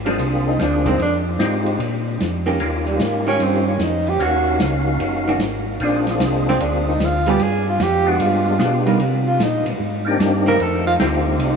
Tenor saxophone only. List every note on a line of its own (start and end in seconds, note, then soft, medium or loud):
0.48 0.64 D#4 medium
0.63 0.90 D4 medium
0.89 1.01 C4 medium
1.02 1.17 D4 medium
2.87 3.03 G3 medium
3.02 3.27 A#3 medium
3.28 3.45 C#4 loud
3.43 3.67 C4 medium
3.68 3.85 C#4 medium
3.83 4.11 D#4 medium
4.09 4.24 G4 loud
4.23 4.62 F#4 medium
5.84 6.07 D4 medium
6.09 6.27 F3 medium
6.25 6.47 G#3 medium
6.48 6.63 C4 medium
6.62 6.87 D4 medium
6.88 7.06 D#4 medium
7.05 7.32 F4 medium
7.30 7.44 G4 loud
7.42 7.68 G#4 loud
7.69 7.85 F4 medium
7.83 8.10 G4 medium
8.09 8.23 F#4 medium
8.21 8.87 F4 medium
9.28 9.45 F4 medium
9.43 9.67 D#4 medium
9.67 9.74 C4 medium
10.48 10.64 A#4 loud
10.62 10.86 A4 medium
10.87 10.95 F4 medium
11.43 11.56 D#4 medium